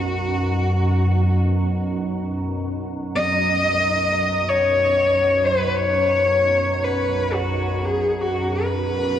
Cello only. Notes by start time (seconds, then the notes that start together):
Already playing: F#4
3.15 D#5
4.49 C#5
5.46 B4
5.76 C#5
6.84 B4
7.33 F#4
7.85 G#4
8.09 G#4
8.21 F#4
8.64 B4